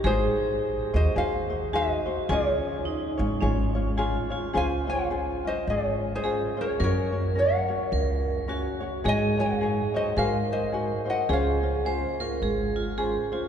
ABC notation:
X:1
M:4/4
L:1/16
Q:"Swing" 1/4=106
K:Db
V:1 name="Ukulele"
[Ac]6 [ce]2 [cf]4 [ce]4 | [Ad]12- [Ad]2 z2 | [fa]2 [df]4 [ce]2 [Ad]3 [Ac]3 [Bd]2 | [Bd]4 [dg]6 z6 |
[ea]2 [df]4 [ce]2 [cf]2 [ce]4 [eg]2 | [df]12- [df]2 z2 |]
V:2 name="Vibraphone"
A12 G4 | F4 E4 D4 F2 F2 | F12 A4 | B8 B4 G4 |
A8 B8 | A4 c2 B2 A2 F2 A2 F2 |]
V:3 name="Ukulele"
[EGAc]6 [EGc]2 [EGAc]2 [EGc]2 [EGAc]2 [EGc]2 | [DFAd]6 [DFd]2 [DFAd]2 [DFd]2 [DFAd]2 [DFd]2 | [DFAc]2 [DFc]2 [DFAc]2 [DF]6 [DFAc]2 [DFc]2 | [DGBd]2 [DGd]2 [DGBd]2 [DGd]6 [DGBd]2 [DGd]2 |
[EGAd]2 [EGd]2 [EGAd]2 [EGd]2 [EGAc]4 [EGAc]2 [EGc]2 | [DFAc]2 [DFc]2 [DFAc]2 [DF]6 [DFAc]2 [DFc]2 |]
V:4 name="Upright bass" clef=bass
A,,,2 z4 E,,2 E,,8 | D,,2 z4 A,,,2 A,,,8 | D,,8 A,,,8 | G,,8 D,,8 |
A,,8 A,,8 | D,,8 A,,,8 |]